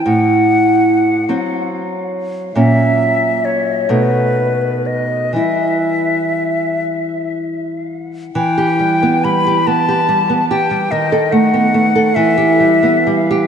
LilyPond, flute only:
\new Staff \with { instrumentName = "Flute" } { \time 6/8 \key e \minor \tempo 4. = 45 fis''4. r4. | e''4 cis''8 b'4 dis''8 | e''4. r4. | g''4 b''8 a''4 g''8 |
dis''8 fis''4 e''4. | }